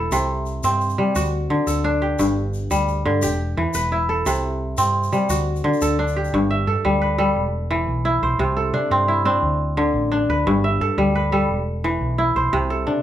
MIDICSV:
0, 0, Header, 1, 4, 480
1, 0, Start_track
1, 0, Key_signature, 1, "major"
1, 0, Tempo, 344630
1, 162, Time_signature, 12, 3, 24, 8
1, 18140, End_track
2, 0, Start_track
2, 0, Title_t, "Kora"
2, 0, Program_c, 0, 46
2, 0, Note_on_c, 0, 52, 84
2, 0, Note_on_c, 0, 64, 76
2, 0, Note_on_c, 0, 67, 76
2, 0, Note_on_c, 0, 69, 64
2, 0, Note_on_c, 0, 71, 63
2, 168, Note_on_c, 0, 48, 85
2, 231, Note_off_c, 0, 52, 0
2, 252, Note_off_c, 0, 71, 0
2, 688, Note_off_c, 0, 67, 0
2, 894, Note_on_c, 0, 60, 84
2, 1369, Note_on_c, 0, 55, 73
2, 1611, Note_on_c, 0, 66, 74
2, 1676, Note_off_c, 0, 48, 0
2, 1676, Note_off_c, 0, 55, 0
2, 1760, Note_off_c, 0, 69, 0
2, 1866, Note_off_c, 0, 64, 0
2, 2092, Note_on_c, 0, 50, 74
2, 2326, Note_on_c, 0, 69, 60
2, 2568, Note_on_c, 0, 62, 81
2, 2810, Note_on_c, 0, 67, 66
2, 2893, Note_off_c, 0, 66, 0
2, 3053, Note_on_c, 0, 43, 82
2, 3120, Note_off_c, 0, 50, 0
2, 3401, Note_off_c, 0, 60, 0
2, 3770, Note_on_c, 0, 55, 80
2, 4161, Note_off_c, 0, 69, 0
2, 4255, Note_on_c, 0, 50, 78
2, 4323, Note_off_c, 0, 55, 0
2, 4487, Note_off_c, 0, 67, 0
2, 4492, Note_on_c, 0, 67, 71
2, 4564, Note_off_c, 0, 43, 0
2, 4564, Note_off_c, 0, 50, 0
2, 4908, Note_off_c, 0, 62, 0
2, 4978, Note_on_c, 0, 52, 76
2, 5218, Note_on_c, 0, 71, 65
2, 5459, Note_on_c, 0, 64, 74
2, 5698, Note_on_c, 0, 69, 65
2, 5936, Note_on_c, 0, 48, 90
2, 6007, Note_off_c, 0, 52, 0
2, 6020, Note_off_c, 0, 71, 0
2, 6460, Note_off_c, 0, 67, 0
2, 6655, Note_on_c, 0, 60, 82
2, 7138, Note_on_c, 0, 55, 71
2, 7381, Note_on_c, 0, 66, 71
2, 7448, Note_off_c, 0, 48, 0
2, 7448, Note_off_c, 0, 55, 0
2, 7533, Note_off_c, 0, 69, 0
2, 7642, Note_off_c, 0, 64, 0
2, 7857, Note_on_c, 0, 50, 82
2, 8103, Note_on_c, 0, 69, 65
2, 8343, Note_on_c, 0, 62, 84
2, 8585, Note_on_c, 0, 67, 63
2, 8669, Note_off_c, 0, 66, 0
2, 8828, Note_on_c, 0, 43, 82
2, 8888, Note_off_c, 0, 50, 0
2, 9060, Note_on_c, 0, 76, 68
2, 9162, Note_off_c, 0, 60, 0
2, 9289, Note_off_c, 0, 69, 0
2, 9295, Note_on_c, 0, 69, 70
2, 9536, Note_on_c, 0, 55, 90
2, 9771, Note_on_c, 0, 71, 66
2, 9991, Note_off_c, 0, 55, 0
2, 10001, Note_off_c, 0, 69, 0
2, 10006, Note_on_c, 0, 69, 68
2, 10007, Note_on_c, 0, 55, 83
2, 10326, Note_off_c, 0, 55, 0
2, 10327, Note_off_c, 0, 43, 0
2, 10500, Note_off_c, 0, 76, 0
2, 10552, Note_off_c, 0, 67, 0
2, 10682, Note_off_c, 0, 62, 0
2, 10732, Note_on_c, 0, 52, 83
2, 11212, Note_on_c, 0, 64, 83
2, 11460, Note_on_c, 0, 72, 64
2, 11544, Note_off_c, 0, 71, 0
2, 11691, Note_on_c, 0, 48, 87
2, 11764, Note_off_c, 0, 52, 0
2, 11841, Note_off_c, 0, 69, 0
2, 11930, Note_on_c, 0, 69, 68
2, 12169, Note_on_c, 0, 62, 75
2, 12415, Note_on_c, 0, 60, 88
2, 12644, Note_off_c, 0, 64, 0
2, 12650, Note_on_c, 0, 64, 72
2, 12883, Note_off_c, 0, 60, 0
2, 12884, Note_off_c, 0, 62, 0
2, 12889, Note_on_c, 0, 60, 84
2, 12890, Note_on_c, 0, 62, 66
2, 13114, Note_off_c, 0, 72, 0
2, 13201, Note_off_c, 0, 48, 0
2, 13611, Note_on_c, 0, 50, 85
2, 13766, Note_off_c, 0, 69, 0
2, 14084, Note_off_c, 0, 62, 0
2, 14089, Note_on_c, 0, 62, 83
2, 14341, Note_on_c, 0, 71, 70
2, 14425, Note_off_c, 0, 60, 0
2, 14581, Note_on_c, 0, 43, 93
2, 14638, Note_off_c, 0, 50, 0
2, 14821, Note_on_c, 0, 76, 65
2, 14832, Note_off_c, 0, 64, 0
2, 15059, Note_on_c, 0, 69, 73
2, 15292, Note_on_c, 0, 55, 82
2, 15530, Note_off_c, 0, 71, 0
2, 15536, Note_on_c, 0, 71, 67
2, 15755, Note_off_c, 0, 55, 0
2, 15768, Note_off_c, 0, 69, 0
2, 15771, Note_on_c, 0, 55, 83
2, 15773, Note_on_c, 0, 69, 68
2, 16075, Note_off_c, 0, 43, 0
2, 16075, Note_off_c, 0, 55, 0
2, 16261, Note_off_c, 0, 76, 0
2, 16428, Note_off_c, 0, 62, 0
2, 16494, Note_on_c, 0, 52, 83
2, 16969, Note_on_c, 0, 64, 86
2, 17215, Note_on_c, 0, 72, 68
2, 17299, Note_off_c, 0, 71, 0
2, 17450, Note_on_c, 0, 48, 92
2, 17514, Note_off_c, 0, 52, 0
2, 17609, Note_off_c, 0, 69, 0
2, 17692, Note_on_c, 0, 69, 63
2, 17921, Note_on_c, 0, 62, 72
2, 18140, Note_off_c, 0, 48, 0
2, 18140, Note_off_c, 0, 62, 0
2, 18140, Note_off_c, 0, 64, 0
2, 18140, Note_off_c, 0, 69, 0
2, 18140, Note_off_c, 0, 72, 0
2, 18140, End_track
3, 0, Start_track
3, 0, Title_t, "Fretless electric bass"
3, 0, Program_c, 1, 35
3, 160, Note_on_c, 1, 36, 88
3, 827, Note_off_c, 1, 36, 0
3, 883, Note_on_c, 1, 43, 89
3, 1319, Note_off_c, 1, 43, 0
3, 1364, Note_on_c, 1, 48, 87
3, 1583, Note_off_c, 1, 48, 0
3, 1606, Note_on_c, 1, 38, 92
3, 2041, Note_off_c, 1, 38, 0
3, 2087, Note_on_c, 1, 50, 86
3, 2196, Note_off_c, 1, 50, 0
3, 2321, Note_on_c, 1, 38, 84
3, 2991, Note_off_c, 1, 38, 0
3, 3048, Note_on_c, 1, 31, 92
3, 3715, Note_off_c, 1, 31, 0
3, 3773, Note_on_c, 1, 38, 98
3, 4208, Note_off_c, 1, 38, 0
3, 4255, Note_on_c, 1, 43, 97
3, 4472, Note_off_c, 1, 43, 0
3, 4492, Note_on_c, 1, 28, 96
3, 4928, Note_off_c, 1, 28, 0
3, 4970, Note_on_c, 1, 40, 90
3, 5081, Note_off_c, 1, 40, 0
3, 5211, Note_on_c, 1, 28, 82
3, 5879, Note_off_c, 1, 28, 0
3, 5931, Note_on_c, 1, 36, 91
3, 6599, Note_off_c, 1, 36, 0
3, 6651, Note_on_c, 1, 43, 91
3, 7089, Note_off_c, 1, 43, 0
3, 7135, Note_on_c, 1, 48, 90
3, 7354, Note_off_c, 1, 48, 0
3, 7369, Note_on_c, 1, 38, 87
3, 7808, Note_off_c, 1, 38, 0
3, 7854, Note_on_c, 1, 50, 83
3, 7965, Note_off_c, 1, 50, 0
3, 8098, Note_on_c, 1, 38, 86
3, 8762, Note_off_c, 1, 38, 0
3, 8813, Note_on_c, 1, 31, 100
3, 9249, Note_off_c, 1, 31, 0
3, 9293, Note_on_c, 1, 43, 106
3, 9404, Note_off_c, 1, 43, 0
3, 9537, Note_on_c, 1, 38, 102
3, 10201, Note_off_c, 1, 38, 0
3, 10252, Note_on_c, 1, 28, 90
3, 10917, Note_off_c, 1, 28, 0
3, 10971, Note_on_c, 1, 35, 90
3, 11407, Note_off_c, 1, 35, 0
3, 11450, Note_on_c, 1, 35, 87
3, 11669, Note_off_c, 1, 35, 0
3, 11682, Note_on_c, 1, 36, 95
3, 12121, Note_off_c, 1, 36, 0
3, 12162, Note_on_c, 1, 48, 104
3, 12275, Note_off_c, 1, 48, 0
3, 12402, Note_on_c, 1, 43, 102
3, 13070, Note_off_c, 1, 43, 0
3, 13126, Note_on_c, 1, 38, 85
3, 13791, Note_off_c, 1, 38, 0
3, 13841, Note_on_c, 1, 33, 92
3, 14279, Note_off_c, 1, 33, 0
3, 14326, Note_on_c, 1, 38, 83
3, 14544, Note_off_c, 1, 38, 0
3, 14564, Note_on_c, 1, 31, 97
3, 15000, Note_off_c, 1, 31, 0
3, 15052, Note_on_c, 1, 43, 110
3, 15158, Note_off_c, 1, 43, 0
3, 15284, Note_on_c, 1, 38, 106
3, 15949, Note_off_c, 1, 38, 0
3, 16001, Note_on_c, 1, 28, 82
3, 16667, Note_off_c, 1, 28, 0
3, 16726, Note_on_c, 1, 35, 95
3, 17160, Note_off_c, 1, 35, 0
3, 17204, Note_on_c, 1, 35, 85
3, 17421, Note_off_c, 1, 35, 0
3, 17450, Note_on_c, 1, 36, 91
3, 17881, Note_off_c, 1, 36, 0
3, 17925, Note_on_c, 1, 48, 99
3, 18033, Note_off_c, 1, 48, 0
3, 18140, End_track
4, 0, Start_track
4, 0, Title_t, "Drums"
4, 165, Note_on_c, 9, 82, 57
4, 304, Note_off_c, 9, 82, 0
4, 641, Note_on_c, 9, 82, 18
4, 781, Note_off_c, 9, 82, 0
4, 883, Note_on_c, 9, 82, 53
4, 1023, Note_off_c, 9, 82, 0
4, 1128, Note_on_c, 9, 82, 18
4, 1248, Note_off_c, 9, 82, 0
4, 1248, Note_on_c, 9, 82, 19
4, 1387, Note_off_c, 9, 82, 0
4, 1610, Note_on_c, 9, 82, 59
4, 1735, Note_off_c, 9, 82, 0
4, 1735, Note_on_c, 9, 82, 17
4, 1875, Note_off_c, 9, 82, 0
4, 2333, Note_on_c, 9, 82, 60
4, 2472, Note_off_c, 9, 82, 0
4, 3051, Note_on_c, 9, 82, 50
4, 3191, Note_off_c, 9, 82, 0
4, 3534, Note_on_c, 9, 82, 19
4, 3673, Note_off_c, 9, 82, 0
4, 3774, Note_on_c, 9, 82, 60
4, 3914, Note_off_c, 9, 82, 0
4, 4012, Note_on_c, 9, 82, 18
4, 4151, Note_off_c, 9, 82, 0
4, 4487, Note_on_c, 9, 82, 69
4, 4608, Note_off_c, 9, 82, 0
4, 4608, Note_on_c, 9, 82, 17
4, 4748, Note_off_c, 9, 82, 0
4, 5208, Note_on_c, 9, 82, 72
4, 5347, Note_off_c, 9, 82, 0
4, 5937, Note_on_c, 9, 82, 63
4, 6046, Note_off_c, 9, 82, 0
4, 6046, Note_on_c, 9, 82, 23
4, 6186, Note_off_c, 9, 82, 0
4, 6652, Note_on_c, 9, 82, 68
4, 6791, Note_off_c, 9, 82, 0
4, 7007, Note_on_c, 9, 82, 22
4, 7136, Note_off_c, 9, 82, 0
4, 7136, Note_on_c, 9, 82, 23
4, 7276, Note_off_c, 9, 82, 0
4, 7377, Note_on_c, 9, 82, 67
4, 7516, Note_off_c, 9, 82, 0
4, 7745, Note_on_c, 9, 82, 20
4, 7884, Note_off_c, 9, 82, 0
4, 7987, Note_on_c, 9, 82, 23
4, 8099, Note_off_c, 9, 82, 0
4, 8099, Note_on_c, 9, 82, 67
4, 8239, Note_off_c, 9, 82, 0
4, 8465, Note_on_c, 9, 82, 23
4, 8604, Note_off_c, 9, 82, 0
4, 8697, Note_on_c, 9, 82, 22
4, 8837, Note_off_c, 9, 82, 0
4, 18140, End_track
0, 0, End_of_file